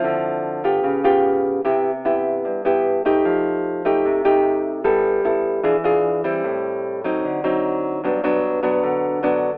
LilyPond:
\new Staff \with { instrumentName = "Nylon-string guitar" } { \time 4/4 \key g \major \tempo 4 = 150 << { <f c' e'>4. <b f' g'>4 <b eis' g'>4. | <b e' g'>8 r8 <b e' g'>4. <b e' g'>4 <a ees' g'>8~ | <a ees' g'>4. <a ees' g'>4 <a ees' g'>4. | <b e' a'>4 <b e' a'>4 <d' f' gis'>8 <d' f' gis'>4 <g c' e'>8~ |
<g c' e'>4. <fis c' ees'>4 <fis c' ees'>4. | <fis b d'>8 <fis b d'>4 <fis b d'>4. <fis b d'>8 r8 | } \\ { d2 cis2 | c2 g,2 | f2 c2 | g2 e2 |
a,2 d2 | g,2 d2 | } >> }